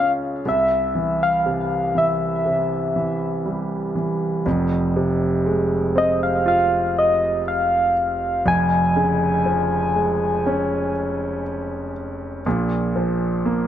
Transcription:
Already playing: C#2 C#3 C#4 F4
0.00 F5
0.45 C2 E5
0.95 E3
1.23 F5
1.46 C3
1.95 E3 E5
2.46 C3
2.96 E3
3.46 G3
3.95 E3
4.46 F1 F2
4.96 C3
5.46 G#3
5.96 C4 D#5
6.23 F5
6.46 F4 F5
6.99 D#5
7.48 F5
8.46 F1 F2 G#5
8.96 C#3
9.46 F3
9.96 G#3
10.46 C#4
12.46 A#1 A#2
12.96 F3
13.45 A#3

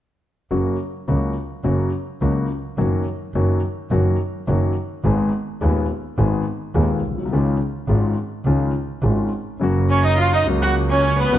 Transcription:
0.51 F#1 F#2 C#3 F#3 A#3 F#4
1.08 C#2 C#3 F#3 A#3 F#4
1.64 F#1 F#2 C#3 F#3 A#3 F#4
2.21 C#2 C#3 F#3 A#3 F#4
2.78 F#1 F#2 D#3 F#3 A#3 F#4
3.34 F#1 F#2 D#3 F#3 A#3 F#4
3.91 F#1 F#2 D#3 F#3 A#3 F#4
4.47 F#1 F#2 D#3 F#3 A#3 F#4
5.04 G#1 G#2 D#3 G#3 B3 G#4
5.61 D#1 D#2 D#3 G#3 B3 G#4
6.18 G#1 G#2 D#3 G#3 B3 G#4
6.75 D#1 D#2 D#3 G#3 B3 G#4
7.04 B1
7.11 A#1
7.18 B1
7.25 C2
7.32 C#2 C#3 D#3 G#3 C#4 F4
7.88 G#1 G#2 D#3 G#3 C#4 F4
8.45 C#2 C#3 D#3 G#3 C#4 F4
9.03 G#1 G#2 D#3 G#3 C#4 F4
9.60 F#1 F#2 C#3 F#3 A#3 F#4
9.90 C#4 C#5
10.04 D#4 D#5
10.18 F4 F5
10.33 D#4 D#5
10.46 C#2 C#3 F#3 A#3 F#4
10.62 F#4 F#5
10.90 C#4 C#5
11.19 B3 B4
11.32 F#1 F#2 C#3 F#3 A#3 F#4

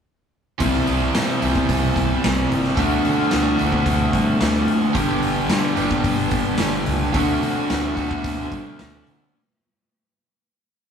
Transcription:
0.58 C2 C3 E3 G3 C4 E4, kick, open hi-hat
0.74 snare
0.87 C2, open hi-hat
1.15 C3, snare, open hi-hat
1.42 C2 C3 E3 G3 C4 E4, open hi-hat
1.55 kick
1.69 C2, kick, open hi-hat
1.96 C2, kick, open hi-hat
2.24 C2, snare, open hi-hat
2.52 G1, open hi-hat
2.64 snare
2.76 D2 D3 A3 C4 D4 F#4, kick, open hi-hat
3.05 D3, open hi-hat
3.31 D2, snare, open hi-hat
3.57 D2 D3 A3 C4 F#4, open hi-hat
3.72 kick
3.86 D2, kick, open hi-hat
4.13 G2, kick, open hi-hat
4.41 D2, snare, open hi-hat
4.67 D3, open hi-hat
4.93 G1 G2 D3 G3 B3 D4 G4, kick, open hi-hat
5.22 G1, open hi-hat
5.49 G2, snare, open hi-hat
5.75 G1 G2 D3 G3 B3 D4 G4, open hi-hat
5.91 kick
6.04 G1, kick, open hi-hat
6.31 G1, kick, open hi-hat
6.58 G1, snare, open hi-hat
6.86 C#2, open hi-hat
7.12 D2 D3 A3 C4 F#4, kick, open hi-hat
7.18 D4
7.42 D3, open hi-hat
7.70 D2, snare, open hi-hat
7.95 D2 D3 A3 C4 F#4, kick, open hi-hat
8.11 kick
8.24 D2, kick, open hi-hat
8.51 G2, kick, open hi-hat
8.79 D2, snare, open hi-hat
9.07 D3, open hi-hat

